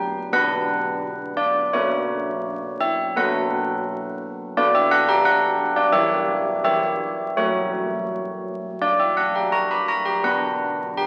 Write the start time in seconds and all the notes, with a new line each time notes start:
Already playing: B3 D4 B4 G5
0.33 B3 D4 B4 F#5
1.37 D5
1.73 B3 F#4 A#4 C#5
2.81 E5
3.16 B3 F#4 A#4 F#5
4.57 B3 F#4 D5
4.75 E5
4.91 F#5
5.09 G5
5.25 F#5
5.76 D5
5.92 E3 G4 C#5 E5
6.64 E3 G4 C#5 E5
7.37 F#3 F#4 A#4 C#5
8.82 D5
9.00 E5
9.17 F#5
9.36 G5
9.52 A#5
9.71 B5
9.88 A#5
10.05 G5
10.23 B3 D4 B4 F#5
10.97 G5